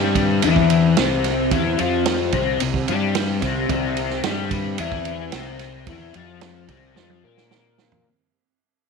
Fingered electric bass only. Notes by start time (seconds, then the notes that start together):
Already playing: G2
0.44 E2
0.98 C2
1.52 E2
1.80 F2
2.33 C2
2.61 C2
2.89 G2
3.42 C2
3.69 C2
4.25 G2
4.79 E2
5.33 C2
5.87 E2
6.15 F2
6.69 C2
6.97 F2
7.24 A#2